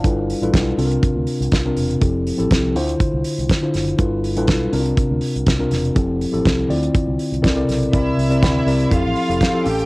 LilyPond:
<<
  \new Staff \with { instrumentName = "String section" } { \time 4/4 \key c \mixolydian \tempo 4 = 122 r1 | r1 | r1 | r1 |
<e' e''>2 <f' f''>4. <g' g''>8 | }
  \new Staff \with { instrumentName = "Tine electric piano" } { \time 4/4 \key c \mixolydian <g d' e' f' a' b' f''>8 r16 <g d' e' f' a' b'>8 r16 <c c' d' f' a' bes'>4. r16 <c c' d' f' bes'>8 r16 | <f c' e' g' a'>8 r16 <f c' e' g' a'>8 r16 <d d' e' f' c''>4. r16 <d d' e' f' c''>8 r16 | <g d' e' f' a' b'>8 r16 <g d' e' f' a' b'>8 r16 <c c' d' e' f' bes'>4. r16 <c c' d' f' bes'>8 r16 | <f c' e' g' a'>8 r16 <f c' e' g' a'>8 r16 <d c' e' f' d''>4~ <d c' e' f' d''>16 r16 <c c' e' a' bes' d''>16 <c c' e' a' bes' d''>8 r16 |
<c c' e' bes' d''>8 r16 <c c' e' bes' d''>8 r16 <c c' e' bes' d''>16 r16 <f c' e' g' a'>8 r16 <f c' e' g' a'>16 r16 <f c' e' g' a'>16 <cis' g' a'>8 | }
  \new Staff \with { instrumentName = "Fingered electric bass" } { \clef bass \time 4/4 \key c \mixolydian g,,8. a,,16 b,,8 c,8 r16 d,16 r16 c,16 c,8 e,,8 | f,,8. a,,16 c,8 d,8 r16 c,16 r16 c,16 r8 ges,,8 | g,,8. a,,16 b,,8 c,8 r16 d,16 r16 c,16 c,8 e,,8 | f,,8. a,,16 c,8 d,8 r16 c,16 r16 c,16 c,8 b,,8 |
c,8 c,8 d,8 c,8 f,,16 a,,16 r16 f,,16 r8 a,,8 | }
  \new DrumStaff \with { instrumentName = "Drums" } \drummode { \time 4/4 <hh bd>8 hho16 hh16 <hh bd sn>8 hho16 hh16 <hh bd>8 hho16 hh16 <hh bd sn>8 hho16 hh16 | <hh bd>8 hho16 hh16 <hh bd sn>8 hho16 hh16 <hh bd>8 hho16 hh16 <hh bd sn>8 <hho sn>16 hh16 | <hh bd>8 hho16 hh16 <hh bd sn>8 hho16 hh16 <hh bd>8 hho16 hh16 <hh bd sn>8 <hho sn>16 hh16 | <hh bd>8 hho16 hh16 <hh bd sn>8 hho16 hh16 <hh bd>8 hho16 hh16 <hh bd sn>8 <hho sn>16 hh16 |
<hh bd>8 hho16 hh16 <hh bd sn>8 hho16 hh16 <hh bd>8 hho16 hh16 <hh bd sn>8 hho16 hh16 | }
>>